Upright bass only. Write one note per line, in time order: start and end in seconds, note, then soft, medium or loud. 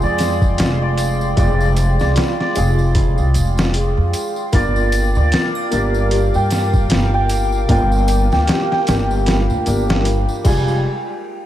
0.03 0.61 F2 medium
0.59 1.35 F1 medium
1.38 1.95 F1 loud
2.01 2.15 C2 medium
2.57 3.14 F1 loud
3.19 3.33 C2 medium
3.35 3.93 F1 loud
3.97 4.12 F2 loud
4.53 5.11 G1 loud
5.16 5.30 D2 medium
5.73 6.30 G1 loud
6.35 6.93 G2 medium
6.91 7.66 G1 medium
7.70 8.27 G1 loud
8.32 8.46 D2 medium
8.88 9.46 G1 loud
9.51 9.65 D2 medium
9.67 10.24 G1 loud
10.45 10.82 F1 medium